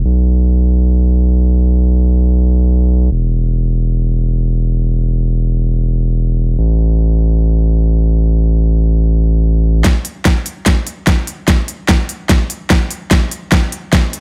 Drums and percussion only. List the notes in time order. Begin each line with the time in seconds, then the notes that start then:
9.84 kick, snare, closed hi-hat
10.05 closed hi-hat
10.25 kick, snare, closed hi-hat
10.46 closed hi-hat
10.66 kick, snare, closed hi-hat
10.87 closed hi-hat
11.07 kick, snare, closed hi-hat
11.27 closed hi-hat
11.48 kick, snare, closed hi-hat
11.68 closed hi-hat
11.89 kick, snare, closed hi-hat
12.09 closed hi-hat
12.29 kick, snare, closed hi-hat
12.50 closed hi-hat
12.70 kick, snare, closed hi-hat
12.91 closed hi-hat
13.11 kick, snare, closed hi-hat
13.31 closed hi-hat
13.52 kick, snare, closed hi-hat
13.72 closed hi-hat
13.93 kick, snare, closed hi-hat
14.13 closed hi-hat